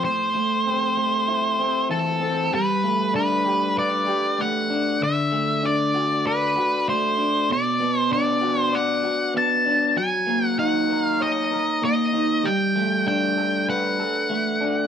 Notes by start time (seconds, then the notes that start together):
Already playing: A3
0.04 A2 C5
0.35 A3
0.66 C4
0.97 A3
1.28 E4
1.59 C4
1.89 E3 A4
2.21 C4
2.52 G3 B4
2.84 A3
3.14 D4 B4
3.45 G4
3.76 B4 D5
4.07 G4
4.39 A3 F#5
4.70 D4
5.01 D3 E5
5.32 A3
5.63 D4 D5
5.94 F#4
6.25 B4 D5
6.56 F#4
6.88 A3 C5
7.18 D4
7.49 B2 D5
7.80 B3
7.99 C5
8.10 D4 D5
8.41 F#4
8.61 C5
8.73 D5 F#5
9.03 F#4
9.34 B3 A5
9.66 D4
9.97 F#3 G#5
10.27 A#3
10.45 F#5
10.59 D#4 F#5
10.90 A#4
11.04 F5
11.20 C#5 D#5
11.51 A#4
11.82 A#3 D#5
12.13 D#4
12.44 G3 G5
12.75 A3
13.06 D4 G5
13.38 A4
13.69 B4 F#5
13.99 A4
14.30 A3
14.61 D4